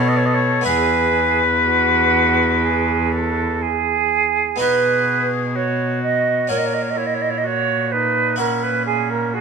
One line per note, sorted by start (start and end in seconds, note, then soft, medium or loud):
0.00 0.62 B2 medium
0.00 0.67 B2 medium
0.00 0.60 B3 medium
0.00 0.61 F#4 medium
0.00 0.62 A4 medium
0.00 0.64 A4 medium
0.09 0.19 D#5 medium
0.17 0.27 C#5 medium
0.26 0.36 D#5 medium
0.35 0.65 C#5 medium
0.61 4.54 B3 soft
0.61 4.55 E4 medium
0.61 4.56 G#4 medium
0.66 4.40 E2 medium
0.66 4.36 E2 medium
0.66 1.42 G#4 medium
0.66 3.58 B4 loud
1.65 2.65 F#4 medium
2.63 3.14 G#4 medium
3.12 3.63 A4 medium
3.62 4.59 G#4 medium
4.56 6.44 B3 soft
4.56 6.45 D#4 soft
4.56 6.46 F#4 soft
4.60 6.51 B2 medium
4.60 6.46 B2 soft
4.60 5.58 G#4 medium
4.60 5.30 B4 medium
5.55 6.49 F#4 soft
5.55 6.02 C#5 medium
6.03 6.51 D#5 medium
6.47 9.41 A#2 medium
6.47 9.41 A#2 soft
6.47 8.34 C#4 soft
6.47 8.35 F#4 soft
6.47 6.99 A#4 medium
6.47 6.59 C#5 medium
6.58 6.67 D#5 medium
6.66 6.75 C#5 medium
6.74 6.84 D#5 soft
6.82 6.91 C#5 soft
6.90 6.99 D#5 medium
6.97 7.46 E4 soft
6.97 7.08 C#5 medium
7.06 7.16 D#5 medium
7.14 7.23 C#5 medium
7.22 7.31 D#5 medium
7.30 7.39 C#5 medium
7.38 7.48 D#5 medium
7.44 7.92 F#4 soft
7.44 7.93 C#5 medium
7.92 8.40 D#4 medium
7.92 8.38 B4 medium
8.36 9.36 C#4 soft
8.36 9.41 E4 soft
8.36 9.41 F#4 soft
8.36 8.65 A#4 medium
8.63 8.85 B4 medium
8.86 9.12 G#4 medium
9.10 9.35 A#4 medium
9.34 9.41 F#4 medium
9.34 9.41 G#4 medium